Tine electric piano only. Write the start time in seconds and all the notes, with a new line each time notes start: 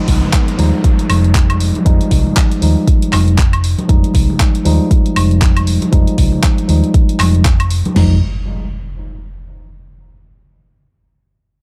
Already playing: F3 G3 G#3 D#4
0.58 F3 G3 G#3 D#4
1.85 F3 G3 G#3 D#4
2.61 F3 G3 G#3 D#4
3.88 F3 G3 G#3 D#4
4.65 F3 G3 G#3 D#4
5.92 F3 G3 G#3 D#4
6.68 F3 G3 G#3 D#4
7.95 F3 G3 G#3 D#4